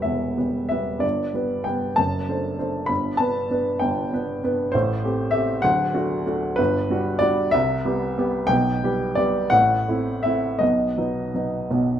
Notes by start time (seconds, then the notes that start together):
Already playing: E1 E2 G3 B3 B4 F#5 G5
0.02 E1 E2 E5
0.37 G3 B3 B4
0.69 G3 B3 B4 E5
0.99 G1 G2 D5
1.34 G3 B3 B4
1.64 G3 B3 B4 G5
1.96 F#1 F#2 A5
2.29 A3 D4 C5
2.59 A3 D4 C5
2.86 G1 G2 B5
3.17 B3 D4 B4 A5
3.51 B3 D4 B4
3.79 G1 G2 G5
4.13 B3 D4 B4
4.44 B3 D4 B4
4.72 A1 A2 C5
5.03 A3 C4 G4
5.31 A3 C4 G4 E5
5.62 D1 D2 F#5
5.94 A3 D4 F#4
6.26 A3 D4 F#4
6.56 G1 G2 B4
6.90 G3 D4 F#4
7.19 G3 D4 F#4 D5
7.51 C2 C3 E5
7.85 G3 B3 G4
8.18 G3 B3 G4
8.47 B1 B2 G5
8.84 G3 B3 G4
9.15 G3 B3 G4 D5
9.50 A1 A2 F#5
9.88 A3 C4 E4
10.23 A3 C4 E4 E5
10.59 B1 B2 D#5
10.98 F#3 B3 D#4
11.35 F#3 B3 D#4
11.70 B1 B2